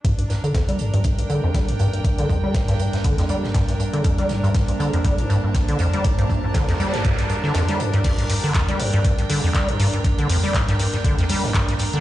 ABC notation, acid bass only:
X:1
M:4/4
L:1/16
Q:"Swing 16ths" 1/4=120
K:Gm
V:1 name="Acid bass" clef=bass
G,, G,, G,, D, F,, G, G,, G,, G,, G,, D, F,, G, G,, G,, G,, | G,, D, F,, G, G,, G,, G,, G,, D, F,, G, G,, G,, G,, G,, D, | F,, G, G,, G,, G,, G,, D, F,, G, G,, G,, G,, G,, D, F,, G, | G,, G,, G,, G,, D, F,, G, G,, G,, G,, G,, D, F,, G, G,, G,, |
G,, G,, G,, D, F,, G, G,, G,, G,, G,, D, F,, G, G,, G,, G,, | G,, D, F,, G, G,, G,, G,, G,, D, F,, G, G,, G,, G,, G,, D, |]